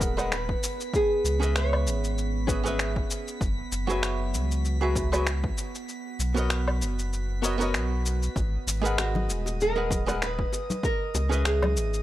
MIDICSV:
0, 0, Header, 1, 6, 480
1, 0, Start_track
1, 0, Key_signature, 5, "minor"
1, 0, Tempo, 618557
1, 727, Time_signature, 4, 2, 24, 8
1, 9332, End_track
2, 0, Start_track
2, 0, Title_t, "Synth texture"
2, 0, Program_c, 0, 99
2, 0, Note_on_c, 0, 59, 76
2, 0, Note_on_c, 0, 95, 75
2, 6493, Note_on_c, 0, 75, 82
2, 6493, Note_on_c, 0, 87, 83
2, 6496, Note_off_c, 0, 95, 0
2, 6497, Note_off_c, 0, 59, 0
2, 9332, Note_off_c, 0, 75, 0
2, 9332, Note_off_c, 0, 87, 0
2, 9332, End_track
3, 0, Start_track
3, 0, Title_t, "Hollow-body jazz guitar"
3, 0, Program_c, 1, 26
3, 0, Note_on_c, 1, 56, 72
3, 0, Note_on_c, 1, 68, 69
3, 0, Note_on_c, 1, 70, 63
3, 0, Note_on_c, 1, 71, 60
3, 0, Note_on_c, 1, 78, 81
3, 104, Note_off_c, 1, 56, 0
3, 105, Note_off_c, 1, 68, 0
3, 108, Note_off_c, 1, 70, 0
3, 109, Note_off_c, 1, 71, 0
3, 111, Note_off_c, 1, 78, 0
3, 131, Note_on_c, 1, 56, 93
3, 134, Note_on_c, 1, 68, 80
3, 140, Note_on_c, 1, 70, 68
3, 142, Note_on_c, 1, 71, 80
3, 147, Note_on_c, 1, 78, 98
3, 248, Note_off_c, 1, 56, 0
3, 250, Note_off_c, 1, 68, 0
3, 250, Note_off_c, 1, 70, 0
3, 253, Note_off_c, 1, 71, 0
3, 255, Note_off_c, 1, 78, 0
3, 1084, Note_on_c, 1, 61, 74
3, 1092, Note_on_c, 1, 68, 69
3, 1098, Note_on_c, 1, 71, 73
3, 1107, Note_on_c, 1, 75, 69
3, 1115, Note_on_c, 1, 76, 83
3, 1893, Note_off_c, 1, 61, 0
3, 1897, Note_off_c, 1, 68, 0
3, 1901, Note_off_c, 1, 71, 0
3, 1905, Note_off_c, 1, 75, 0
3, 1909, Note_off_c, 1, 76, 0
3, 1918, Note_on_c, 1, 61, 73
3, 1924, Note_on_c, 1, 68, 62
3, 1926, Note_on_c, 1, 71, 65
3, 1933, Note_on_c, 1, 76, 79
3, 1934, Note_on_c, 1, 75, 61
3, 2025, Note_off_c, 1, 61, 0
3, 2025, Note_off_c, 1, 68, 0
3, 2029, Note_off_c, 1, 71, 0
3, 2030, Note_off_c, 1, 75, 0
3, 2031, Note_off_c, 1, 76, 0
3, 2045, Note_on_c, 1, 61, 86
3, 2053, Note_on_c, 1, 68, 82
3, 2061, Note_on_c, 1, 71, 81
3, 2068, Note_on_c, 1, 75, 78
3, 2075, Note_on_c, 1, 76, 97
3, 2627, Note_off_c, 1, 61, 0
3, 2631, Note_off_c, 1, 68, 0
3, 2635, Note_off_c, 1, 71, 0
3, 2638, Note_off_c, 1, 75, 0
3, 2642, Note_off_c, 1, 76, 0
3, 3004, Note_on_c, 1, 54, 86
3, 3012, Note_on_c, 1, 66, 82
3, 3019, Note_on_c, 1, 68, 80
3, 3026, Note_on_c, 1, 71, 85
3, 3034, Note_on_c, 1, 76, 100
3, 3700, Note_off_c, 1, 54, 0
3, 3704, Note_off_c, 1, 66, 0
3, 3708, Note_off_c, 1, 68, 0
3, 3711, Note_off_c, 1, 71, 0
3, 3715, Note_off_c, 1, 76, 0
3, 3731, Note_on_c, 1, 54, 79
3, 3735, Note_on_c, 1, 66, 67
3, 3738, Note_on_c, 1, 68, 73
3, 3745, Note_on_c, 1, 71, 61
3, 3747, Note_on_c, 1, 76, 81
3, 3944, Note_off_c, 1, 54, 0
3, 3946, Note_off_c, 1, 66, 0
3, 3948, Note_off_c, 1, 68, 0
3, 3949, Note_off_c, 1, 71, 0
3, 3952, Note_off_c, 1, 76, 0
3, 3972, Note_on_c, 1, 54, 86
3, 3976, Note_on_c, 1, 66, 89
3, 3980, Note_on_c, 1, 68, 79
3, 3984, Note_on_c, 1, 71, 87
3, 3987, Note_on_c, 1, 76, 98
3, 4088, Note_off_c, 1, 54, 0
3, 4090, Note_off_c, 1, 66, 0
3, 4092, Note_off_c, 1, 68, 0
3, 4094, Note_off_c, 1, 71, 0
3, 4096, Note_off_c, 1, 76, 0
3, 4923, Note_on_c, 1, 59, 80
3, 4930, Note_on_c, 1, 66, 69
3, 4938, Note_on_c, 1, 70, 68
3, 4944, Note_on_c, 1, 73, 71
3, 4953, Note_on_c, 1, 75, 87
3, 5733, Note_off_c, 1, 59, 0
3, 5736, Note_off_c, 1, 66, 0
3, 5740, Note_off_c, 1, 70, 0
3, 5744, Note_off_c, 1, 73, 0
3, 5748, Note_off_c, 1, 75, 0
3, 5758, Note_on_c, 1, 59, 71
3, 5763, Note_on_c, 1, 66, 63
3, 5765, Note_on_c, 1, 70, 66
3, 5773, Note_on_c, 1, 73, 62
3, 5774, Note_on_c, 1, 75, 77
3, 5864, Note_off_c, 1, 59, 0
3, 5867, Note_off_c, 1, 66, 0
3, 5868, Note_off_c, 1, 70, 0
3, 5870, Note_off_c, 1, 73, 0
3, 5872, Note_off_c, 1, 75, 0
3, 5881, Note_on_c, 1, 59, 89
3, 5890, Note_on_c, 1, 66, 77
3, 5897, Note_on_c, 1, 70, 84
3, 5906, Note_on_c, 1, 73, 83
3, 5914, Note_on_c, 1, 75, 100
3, 6465, Note_off_c, 1, 59, 0
3, 6469, Note_off_c, 1, 66, 0
3, 6473, Note_off_c, 1, 70, 0
3, 6477, Note_off_c, 1, 73, 0
3, 6481, Note_off_c, 1, 75, 0
3, 6841, Note_on_c, 1, 56, 91
3, 6850, Note_on_c, 1, 68, 85
3, 6857, Note_on_c, 1, 70, 82
3, 6864, Note_on_c, 1, 71, 82
3, 6873, Note_on_c, 1, 78, 100
3, 7539, Note_off_c, 1, 56, 0
3, 7543, Note_off_c, 1, 68, 0
3, 7547, Note_off_c, 1, 70, 0
3, 7550, Note_off_c, 1, 71, 0
3, 7555, Note_off_c, 1, 78, 0
3, 7570, Note_on_c, 1, 56, 77
3, 7574, Note_on_c, 1, 68, 69
3, 7578, Note_on_c, 1, 70, 70
3, 7581, Note_on_c, 1, 71, 64
3, 7587, Note_on_c, 1, 78, 77
3, 7784, Note_off_c, 1, 56, 0
3, 7785, Note_off_c, 1, 68, 0
3, 7787, Note_off_c, 1, 70, 0
3, 7789, Note_off_c, 1, 71, 0
3, 7792, Note_off_c, 1, 78, 0
3, 7810, Note_on_c, 1, 56, 94
3, 7816, Note_on_c, 1, 68, 78
3, 7819, Note_on_c, 1, 70, 88
3, 7825, Note_on_c, 1, 71, 77
3, 7827, Note_on_c, 1, 78, 104
3, 7927, Note_off_c, 1, 56, 0
3, 7928, Note_off_c, 1, 68, 0
3, 7932, Note_off_c, 1, 70, 0
3, 7933, Note_off_c, 1, 71, 0
3, 7935, Note_off_c, 1, 78, 0
3, 8764, Note_on_c, 1, 61, 76
3, 8771, Note_on_c, 1, 68, 67
3, 8779, Note_on_c, 1, 71, 70
3, 8787, Note_on_c, 1, 75, 66
3, 8794, Note_on_c, 1, 76, 85
3, 9332, Note_off_c, 1, 61, 0
3, 9332, Note_off_c, 1, 68, 0
3, 9332, Note_off_c, 1, 71, 0
3, 9332, Note_off_c, 1, 75, 0
3, 9332, Note_off_c, 1, 76, 0
3, 9332, End_track
4, 0, Start_track
4, 0, Title_t, "Nylon-string guitar"
4, 0, Program_c, 2, 24
4, 0, Note_on_c, 2, 70, 94
4, 254, Note_off_c, 2, 70, 0
4, 257, Note_on_c, 2, 71, 86
4, 738, Note_off_c, 2, 71, 0
4, 741, Note_on_c, 2, 68, 99
4, 1222, Note_off_c, 2, 68, 0
4, 1225, Note_on_c, 2, 73, 98
4, 2385, Note_off_c, 2, 73, 0
4, 6991, Note_on_c, 2, 66, 82
4, 7464, Note_on_c, 2, 70, 99
4, 7473, Note_off_c, 2, 66, 0
4, 7937, Note_off_c, 2, 70, 0
4, 7940, Note_on_c, 2, 71, 108
4, 8414, Note_off_c, 2, 71, 0
4, 8417, Note_on_c, 2, 70, 110
4, 8897, Note_on_c, 2, 68, 80
4, 8906, Note_off_c, 2, 70, 0
4, 9332, Note_off_c, 2, 68, 0
4, 9332, End_track
5, 0, Start_track
5, 0, Title_t, "Sub bass"
5, 0, Program_c, 3, 38
5, 0, Note_on_c, 3, 27, 77
5, 430, Note_off_c, 3, 27, 0
5, 963, Note_on_c, 3, 37, 92
5, 1443, Note_on_c, 3, 32, 76
5, 1455, Note_off_c, 3, 37, 0
5, 2349, Note_off_c, 3, 32, 0
5, 2645, Note_on_c, 3, 30, 100
5, 2816, Note_off_c, 3, 30, 0
5, 2884, Note_on_c, 3, 30, 89
5, 3362, Note_on_c, 3, 37, 73
5, 3374, Note_off_c, 3, 30, 0
5, 4269, Note_off_c, 3, 37, 0
5, 4804, Note_on_c, 3, 35, 89
5, 5286, Note_on_c, 3, 30, 80
5, 5298, Note_off_c, 3, 35, 0
5, 6008, Note_on_c, 3, 35, 81
5, 6019, Note_off_c, 3, 30, 0
5, 6431, Note_off_c, 3, 35, 0
5, 6486, Note_on_c, 3, 32, 94
5, 6657, Note_off_c, 3, 32, 0
5, 6724, Note_on_c, 3, 32, 91
5, 7207, Note_on_c, 3, 27, 77
5, 7218, Note_off_c, 3, 32, 0
5, 8111, Note_off_c, 3, 27, 0
5, 8646, Note_on_c, 3, 37, 96
5, 9124, Note_on_c, 3, 32, 75
5, 9136, Note_off_c, 3, 37, 0
5, 9332, Note_off_c, 3, 32, 0
5, 9332, End_track
6, 0, Start_track
6, 0, Title_t, "Drums"
6, 6, Note_on_c, 9, 36, 104
6, 10, Note_on_c, 9, 69, 75
6, 84, Note_off_c, 9, 36, 0
6, 88, Note_off_c, 9, 69, 0
6, 141, Note_on_c, 9, 77, 54
6, 144, Note_on_c, 9, 69, 41
6, 219, Note_off_c, 9, 77, 0
6, 222, Note_off_c, 9, 69, 0
6, 248, Note_on_c, 9, 26, 97
6, 251, Note_on_c, 9, 69, 32
6, 325, Note_off_c, 9, 26, 0
6, 328, Note_off_c, 9, 69, 0
6, 380, Note_on_c, 9, 36, 101
6, 457, Note_off_c, 9, 36, 0
6, 491, Note_on_c, 9, 69, 73
6, 569, Note_off_c, 9, 69, 0
6, 625, Note_on_c, 9, 69, 44
6, 703, Note_off_c, 9, 69, 0
6, 726, Note_on_c, 9, 36, 111
6, 732, Note_on_c, 9, 69, 29
6, 804, Note_off_c, 9, 36, 0
6, 809, Note_off_c, 9, 69, 0
6, 972, Note_on_c, 9, 69, 75
6, 1049, Note_off_c, 9, 69, 0
6, 1106, Note_on_c, 9, 69, 42
6, 1183, Note_off_c, 9, 69, 0
6, 1208, Note_on_c, 9, 26, 85
6, 1211, Note_on_c, 9, 69, 28
6, 1286, Note_off_c, 9, 26, 0
6, 1289, Note_off_c, 9, 69, 0
6, 1343, Note_on_c, 9, 77, 75
6, 1421, Note_off_c, 9, 77, 0
6, 1452, Note_on_c, 9, 69, 72
6, 1529, Note_off_c, 9, 69, 0
6, 1585, Note_on_c, 9, 69, 38
6, 1662, Note_off_c, 9, 69, 0
6, 1692, Note_on_c, 9, 69, 31
6, 1770, Note_off_c, 9, 69, 0
6, 1925, Note_on_c, 9, 36, 96
6, 1931, Note_on_c, 9, 69, 72
6, 2003, Note_off_c, 9, 36, 0
6, 2009, Note_off_c, 9, 69, 0
6, 2064, Note_on_c, 9, 69, 39
6, 2142, Note_off_c, 9, 69, 0
6, 2167, Note_on_c, 9, 26, 94
6, 2170, Note_on_c, 9, 69, 32
6, 2245, Note_off_c, 9, 26, 0
6, 2248, Note_off_c, 9, 69, 0
6, 2299, Note_on_c, 9, 36, 92
6, 2376, Note_off_c, 9, 36, 0
6, 2409, Note_on_c, 9, 69, 70
6, 2487, Note_off_c, 9, 69, 0
6, 2544, Note_on_c, 9, 69, 42
6, 2621, Note_off_c, 9, 69, 0
6, 2645, Note_on_c, 9, 36, 106
6, 2649, Note_on_c, 9, 69, 29
6, 2723, Note_off_c, 9, 36, 0
6, 2727, Note_off_c, 9, 69, 0
6, 2888, Note_on_c, 9, 69, 70
6, 2965, Note_off_c, 9, 69, 0
6, 3023, Note_on_c, 9, 69, 43
6, 3100, Note_off_c, 9, 69, 0
6, 3127, Note_on_c, 9, 26, 89
6, 3129, Note_on_c, 9, 69, 28
6, 3204, Note_off_c, 9, 26, 0
6, 3207, Note_off_c, 9, 69, 0
6, 3369, Note_on_c, 9, 69, 70
6, 3447, Note_off_c, 9, 69, 0
6, 3503, Note_on_c, 9, 69, 39
6, 3580, Note_off_c, 9, 69, 0
6, 3609, Note_on_c, 9, 69, 32
6, 3686, Note_off_c, 9, 69, 0
6, 3845, Note_on_c, 9, 36, 91
6, 3848, Note_on_c, 9, 69, 67
6, 3923, Note_off_c, 9, 36, 0
6, 3926, Note_off_c, 9, 69, 0
6, 3980, Note_on_c, 9, 77, 60
6, 3983, Note_on_c, 9, 69, 38
6, 4058, Note_off_c, 9, 77, 0
6, 4060, Note_off_c, 9, 69, 0
6, 4086, Note_on_c, 9, 26, 93
6, 4089, Note_on_c, 9, 69, 31
6, 4164, Note_off_c, 9, 26, 0
6, 4167, Note_off_c, 9, 69, 0
6, 4219, Note_on_c, 9, 36, 99
6, 4296, Note_off_c, 9, 36, 0
6, 4328, Note_on_c, 9, 69, 73
6, 4405, Note_off_c, 9, 69, 0
6, 4463, Note_on_c, 9, 69, 38
6, 4540, Note_off_c, 9, 69, 0
6, 4569, Note_on_c, 9, 69, 29
6, 4646, Note_off_c, 9, 69, 0
6, 4810, Note_on_c, 9, 69, 70
6, 4887, Note_off_c, 9, 69, 0
6, 4941, Note_on_c, 9, 69, 44
6, 5019, Note_off_c, 9, 69, 0
6, 5045, Note_on_c, 9, 26, 97
6, 5048, Note_on_c, 9, 69, 31
6, 5123, Note_off_c, 9, 26, 0
6, 5126, Note_off_c, 9, 69, 0
6, 5180, Note_on_c, 9, 77, 74
6, 5258, Note_off_c, 9, 77, 0
6, 5290, Note_on_c, 9, 69, 73
6, 5368, Note_off_c, 9, 69, 0
6, 5424, Note_on_c, 9, 69, 39
6, 5502, Note_off_c, 9, 69, 0
6, 5533, Note_on_c, 9, 69, 30
6, 5611, Note_off_c, 9, 69, 0
6, 5772, Note_on_c, 9, 69, 68
6, 5849, Note_off_c, 9, 69, 0
6, 5903, Note_on_c, 9, 69, 36
6, 5981, Note_off_c, 9, 69, 0
6, 6008, Note_on_c, 9, 26, 97
6, 6011, Note_on_c, 9, 69, 32
6, 6086, Note_off_c, 9, 26, 0
6, 6089, Note_off_c, 9, 69, 0
6, 6252, Note_on_c, 9, 69, 69
6, 6330, Note_off_c, 9, 69, 0
6, 6384, Note_on_c, 9, 69, 40
6, 6462, Note_off_c, 9, 69, 0
6, 6487, Note_on_c, 9, 36, 107
6, 6490, Note_on_c, 9, 60, 49
6, 6493, Note_on_c, 9, 69, 30
6, 6564, Note_off_c, 9, 36, 0
6, 6567, Note_off_c, 9, 60, 0
6, 6571, Note_off_c, 9, 69, 0
6, 6734, Note_on_c, 9, 69, 79
6, 6811, Note_off_c, 9, 69, 0
6, 6869, Note_on_c, 9, 69, 45
6, 6946, Note_off_c, 9, 69, 0
6, 6971, Note_on_c, 9, 26, 102
6, 6972, Note_on_c, 9, 60, 75
6, 6974, Note_on_c, 9, 69, 30
6, 7048, Note_off_c, 9, 26, 0
6, 7050, Note_off_c, 9, 60, 0
6, 7051, Note_off_c, 9, 69, 0
6, 7101, Note_on_c, 9, 64, 68
6, 7108, Note_on_c, 9, 63, 83
6, 7179, Note_off_c, 9, 64, 0
6, 7185, Note_off_c, 9, 63, 0
6, 7215, Note_on_c, 9, 69, 73
6, 7292, Note_off_c, 9, 69, 0
6, 7341, Note_on_c, 9, 60, 55
6, 7349, Note_on_c, 9, 69, 42
6, 7419, Note_off_c, 9, 60, 0
6, 7426, Note_off_c, 9, 69, 0
6, 7455, Note_on_c, 9, 69, 31
6, 7532, Note_off_c, 9, 69, 0
6, 7687, Note_on_c, 9, 36, 102
6, 7692, Note_on_c, 9, 63, 57
6, 7694, Note_on_c, 9, 69, 71
6, 7765, Note_off_c, 9, 36, 0
6, 7770, Note_off_c, 9, 63, 0
6, 7772, Note_off_c, 9, 69, 0
6, 7823, Note_on_c, 9, 77, 55
6, 7825, Note_on_c, 9, 60, 70
6, 7826, Note_on_c, 9, 69, 42
6, 7901, Note_off_c, 9, 77, 0
6, 7902, Note_off_c, 9, 60, 0
6, 7903, Note_off_c, 9, 69, 0
6, 7931, Note_on_c, 9, 26, 100
6, 7934, Note_on_c, 9, 69, 32
6, 8009, Note_off_c, 9, 26, 0
6, 8012, Note_off_c, 9, 69, 0
6, 8060, Note_on_c, 9, 36, 108
6, 8138, Note_off_c, 9, 36, 0
6, 8168, Note_on_c, 9, 60, 51
6, 8173, Note_on_c, 9, 69, 75
6, 8245, Note_off_c, 9, 60, 0
6, 8251, Note_off_c, 9, 69, 0
6, 8304, Note_on_c, 9, 63, 84
6, 8305, Note_on_c, 9, 69, 43
6, 8382, Note_off_c, 9, 63, 0
6, 8383, Note_off_c, 9, 69, 0
6, 8407, Note_on_c, 9, 36, 116
6, 8413, Note_on_c, 9, 69, 30
6, 8485, Note_off_c, 9, 36, 0
6, 8491, Note_off_c, 9, 69, 0
6, 8651, Note_on_c, 9, 60, 82
6, 8651, Note_on_c, 9, 69, 78
6, 8728, Note_off_c, 9, 60, 0
6, 8728, Note_off_c, 9, 69, 0
6, 8785, Note_on_c, 9, 69, 47
6, 8862, Note_off_c, 9, 69, 0
6, 8888, Note_on_c, 9, 26, 98
6, 8891, Note_on_c, 9, 69, 32
6, 8965, Note_off_c, 9, 26, 0
6, 8968, Note_off_c, 9, 69, 0
6, 9021, Note_on_c, 9, 77, 67
6, 9022, Note_on_c, 9, 64, 75
6, 9025, Note_on_c, 9, 60, 49
6, 9032, Note_on_c, 9, 63, 94
6, 9098, Note_off_c, 9, 77, 0
6, 9100, Note_off_c, 9, 64, 0
6, 9103, Note_off_c, 9, 60, 0
6, 9109, Note_off_c, 9, 63, 0
6, 9131, Note_on_c, 9, 69, 77
6, 9209, Note_off_c, 9, 69, 0
6, 9263, Note_on_c, 9, 69, 45
6, 9332, Note_off_c, 9, 69, 0
6, 9332, End_track
0, 0, End_of_file